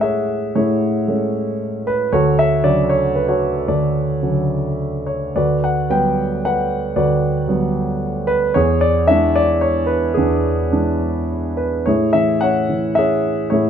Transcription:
Already playing: A2 G#3 A3 C#4 E4 G#4 C#5 F#5
0.00 G#4 C#5 E5
0.55 A2 E4 G#4 C#5
1.08 G#3 A3 C#4
1.87 B4
2.12 D2 F#4 A4 C#5
2.39 E5
2.64 C#3 D3 F#3 D5
2.90 C#5
3.15 B4
3.29 F#4 A4 C#5
3.68 D2 F#4 A4 D5
4.22 C#3 D3 F#3
5.06 C#5
5.35 D2 F#4 B4 D5
5.64 F#5
5.90 F#3 G3 B3 B4 G5
6.45 B4 F#5
6.96 D2 F#4 B4 D5
7.48 F#3 G3 B3
8.27 B4
8.54 E2 G#4 C#5
8.81 D5
9.07 E3 G#3 D4 E5
9.36 D5
9.61 C#5
9.86 B4
10.14 E2 B3 D4 G#4
10.71 E3 G#3 D4
11.57 B4
11.86 A2 E4 G#4 C#5
12.13 E3 E5
12.41 C#4 C#5 F#5
12.69 E3
12.95 C#4 G#4 C#5 E5
13.50 A2 E4 G#4 C#5

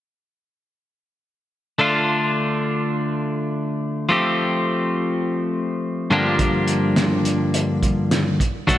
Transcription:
1.79 D3 A3 D4 F4
4.09 F3 A3 C4 G4
6.11 G2 D3 F3 A#3 D4 G4
6.39 kick, closed hi-hat
6.68 closed hi-hat
6.96 snare, closed hi-hat
7.25 closed hi-hat
7.54 closed hi-hat
7.83 kick, closed hi-hat
8.11 snare, closed hi-hat
8.40 kick, closed hi-hat
8.67 D3 F#3 A3 D4 F#4, kick, closed hi-hat

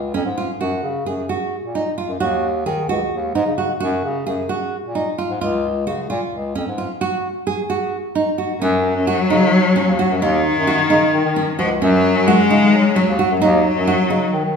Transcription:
Already playing: C#2
0.14 F2 C#4
0.25 G#2
0.38 F4
0.60 F#2 F#4
0.83 C#3
1.06 F#2 G#4
1.29 F#4
1.63 A#2
1.75 D#4
1.98 F4
2.09 F#2
2.19 D#2 F#4
2.66 D#3 G#4
2.89 C#2 F#4
3.12 D#2
3.35 G#2 D#4
3.46 C#3
3.58 F#4
3.80 F#2 F#4
4.04 C#3
4.27 F#2 G#4
4.49 F#4
4.84 A#2
4.95 D#4
5.18 F4
5.30 G#2
5.41 C#2 F4
5.87 C#3 F#4
6.10 A#2 F4
6.33 C#2
6.55 F2 C#4
6.68 G#2
6.78 F4
7.01 F#4
7.47 G#4
7.70 F#4
8.15 D#4
8.38 F#4
8.62 F#2 F#3 C#4
8.96 F#2
9.07 F#4
9.30 C#3 D#4
9.54 F#3
9.76 C#4
9.88 D#2
9.99 F#4
10.11 F#2
10.22 D#2 D#3 D#4
10.56 F#2
10.67 F#4
10.90 C#3 D#4
11.14 D#3
11.25 D#3
11.36 C#4
11.58 C#2 F3 F#4
11.81 F#2 F#3 C#4
12.16 F#2
12.27 G#3 F#4
12.50 C#3 D#4
12.74 F#3
12.96 F#3 C#4
13.08 D#2
13.19 F#4
13.31 F#2
13.40 D#2 F#3 D#4
13.76 F#2
13.87 F#4
14.10 C#3 D#4
14.33 D#3
14.45 D#3

